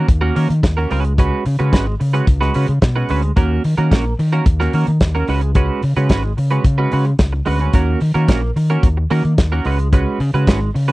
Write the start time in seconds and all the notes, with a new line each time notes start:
0.08 D#2, muted clean electric guitar stroke, kick, closed hi-hat
0.21 A#3 C#4 F#4 A#4
0.35 D#3 A#3 C#4 F#4 A#4, open hi-hat
0.49 D#3, muted clean electric guitar stroke, closed hi-hat
0.63 D#2, muted clean electric guitar stroke, kick, snare, closed hi-hat
0.77 A#3 C#4 F#4 A#4
0.90 C#2 G#3 C#4 F#4 B4, open hi-hat
1.05 muted clean electric guitar stroke, closed hi-hat
1.18 G#3 C#4 F#4 B4, kick, closed hi-hat
1.45 C#3, muted clean electric guitar stroke, open hi-hat
1.59 C#3 G#3 C#4 F#4 B4, closed hi-hat
1.72 G#1 G#3 C#4 F#4 B4, kick, snare, closed hi-hat
1.87 muted clean electric guitar stroke
2.00 C#3, muted clean electric guitar stroke, open hi-hat
2.13 G#3 C#4 F#4 B4, closed hi-hat
2.27 C#2, muted clean electric guitar stroke, kick, closed hi-hat
2.41 G#3 C#4 F#4 B4, snare
2.54 C#3 G#3 C#4 F#4 B4, open hi-hat
2.68 C#3, muted clean electric guitar stroke, closed hi-hat
2.82 B2, muted clean electric guitar stroke, kick, snare, closed hi-hat
2.96 G#3 C#4 F#4 B4
3.09 D2 G#3 C#4 F#4 B4, open hi-hat
3.22 muted clean electric guitar stroke, closed hi-hat
3.36 D#2 A#3 C#4 F#4 A#4, kick, closed hi-hat
3.64 D#3, muted clean electric guitar stroke, open hi-hat
3.78 D#3 A#3 C#4 F#4 A#4, closed hi-hat
3.91 A#1 A#3 C#4 F#4 A#4, kick, snare, closed hi-hat
4.06 muted clean electric guitar stroke
4.19 D#3, muted clean electric guitar stroke, open hi-hat
4.32 A#3 C#4 F#4 A#4, closed hi-hat
4.46 D#2, muted clean electric guitar stroke, kick, closed hi-hat
4.60 A#3 C#4 F#4 A#4, snare
4.73 D#3 A#3 C#4 F#4 A#4, open hi-hat
4.87 D#3, muted clean electric guitar stroke, closed hi-hat
5.00 D#2, muted clean electric guitar stroke, kick, snare, closed hi-hat
5.15 A#3 C#4 F#4 A#4
5.27 C#2 G#3 C#4 F#4 B4, open hi-hat
5.41 muted clean electric guitar stroke, closed hi-hat
5.55 G#3 C#4 F#4 B4, kick, closed hi-hat
5.82 C#3, muted clean electric guitar stroke, open hi-hat
5.96 C#3 G#3 C#4 F#4 B4, closed hi-hat
6.09 G#1 G#3 C#4 F#4 B4, kick, snare, closed hi-hat
6.24 muted clean electric guitar stroke
6.37 C#3, muted clean electric guitar stroke, open hi-hat
6.51 G#3 C#4 F#4 B4, closed hi-hat
6.64 C#3, muted clean electric guitar stroke, kick, closed hi-hat
6.78 G#3 C#4 F#4 B4
6.91 C#3 G#3 C#4 F#4 B4, open hi-hat
7.05 muted clean electric guitar stroke, closed hi-hat
7.19 C#2, muted clean electric guitar stroke, kick, snare, closed hi-hat
7.33 muted clean electric guitar stroke
7.45 D2 G#3 C#4 F#4 B4, open hi-hat
7.59 G#3 C#4 F#4 B4, closed hi-hat
7.73 D#2 A#3 C#4 F#4 A#4, kick, closed hi-hat
8.00 D#3, muted clean electric guitar stroke, open hi-hat
8.14 D#3 A#3 C#4 F#4 A#4, closed hi-hat
8.28 A#1 A#3 C#4 F#4 A#4, kick, snare, closed hi-hat
8.42 muted clean electric guitar stroke
8.56 D#3, muted clean electric guitar stroke, open hi-hat
8.70 A#3 C#4 F#4 A#4, closed hi-hat
8.83 D#2, kick, closed hi-hat
8.97 muted clean electric guitar stroke
9.10 D#3 A#3 C#4 F#4 A#4, open hi-hat
9.24 D#3, muted clean electric guitar stroke, closed hi-hat
9.38 D#2, muted clean electric guitar stroke, kick, snare, closed hi-hat
9.52 A#3 C#4 F#4 A#4
9.65 C#2 G#3 C#4 F#4 B4, open hi-hat
9.79 muted clean electric guitar stroke, closed hi-hat
9.93 G#3 C#4 F#4 B4, kick, closed hi-hat
10.20 C#3, muted clean electric guitar stroke, open hi-hat
10.34 C#3 G#3 C#4 F#4 B4, closed hi-hat
10.47 G#1 G#3 C#4 F#4 B4, kick, snare, closed hi-hat
10.61 muted clean electric guitar stroke
10.74 C#3, muted clean electric guitar stroke, open hi-hat
10.88 G#3 C#4 F#4 B4, closed hi-hat